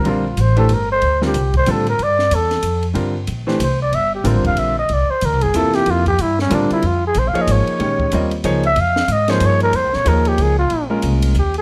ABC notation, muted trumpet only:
X:1
M:3/4
L:1/8
Q:"Swing" 1/4=186
K:Cmix
V:1 name="Muted trumpet"
F2 c A B c- | c G2 c A B | d2 A3 z | z4 c d |
e G c f e _e | d c B _A =A G | F G E ^C D E | [K:Bbdor] F A (3c f e d2- |
d4 z =e | f2 e c d B | c d B G A F- | F z3 G A |]